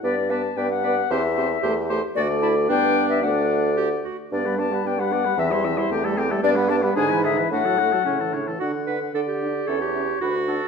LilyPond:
<<
  \new Staff \with { instrumentName = "Flute" } { \time 2/4 \key g \major \tempo 4 = 112 d''8 a''8 g''16 fis''8. | e''4. r8 | d''8 a''8 g''8. e''16 | fis''4 r4 |
d''8 a''8 g''16 fis''8. | e''4. r8 | \key d \major d''8 a''8 gis''8 e''8 | fis''4. r8 |
fis''8 fis''8 fis''8 fis''8 | e''8 e''8 fis''8 fis''8 | }
  \new Staff \with { instrumentName = "Oboe" } { \time 2/4 \key g \major d''8 d''8 d''8 d''8 | c''8 c''8 c''8 c''8 | d''4 d''4 | d''4. r8 |
d''16 b'16 d''16 b'16 d''16 b'16 d''16 b'16 | e''16 c''16 e''16 c''16 g'16 a'16 g'16 a'16 | \key d \major d''16 b'16 d''16 b'16 gis'16 b'16 gis'16 b'16 | fis'16 a'16 fis'16 a'16 cis''16 a'16 cis''16 a'16 |
fis''4 d''4 | cis''4 b'8 a'8 | }
  \new Staff \with { instrumentName = "Clarinet" } { \time 2/4 \key g \major b'8 b'8 b'8 b'8 | g'8 g'8 g'8 g'8 | fis'8 e'8 d'4 | d'4 g'8 fis'8 |
d'16 b16 d'16 b16 d'16 b16 d'16 b16 | c'16 e'16 c'16 e'16 c'16 a16 c'16 a16 | \key d \major d'16 b16 d'16 b16 d'16 e'16 d'16 e'16 | d'16 fis'16 d'16 fis'16 cis'8 d'8 |
fis'8 b'8 a'16 g'8. | a'16 g'8. fis'4 | }
  \new Staff \with { instrumentName = "French horn" } { \time 2/4 \key g \major b8 b8 b8 b8 | c'8 c'8 a8 a8 | a4 b4 | a4. r8 |
b16 g16 b16 g16 b16 g16 b16 g16 | e16 g16 e16 g16 a16 g16 a16 g16 | \key d \major b16 g16 b16 g16 d16 e16 d16 e16 | a16 fis16 a16 fis16 cis16 e16 cis16 e16 |
d'8 d'8 d'8 d'8 | cis'8 cis'8 d'8 d'8 | }
  \new Staff \with { instrumentName = "Bassoon" } { \clef bass \time 2/4 \key g \major g,4 g,4 | e,4 e,4 | d,4 g,4 | d,4. r8 |
g,4 g,4 | e,4 e,4 | \key d \major g,4 gis,4 | a,4 a,4 |
d4 d4 | e,4 d,4 | }
>>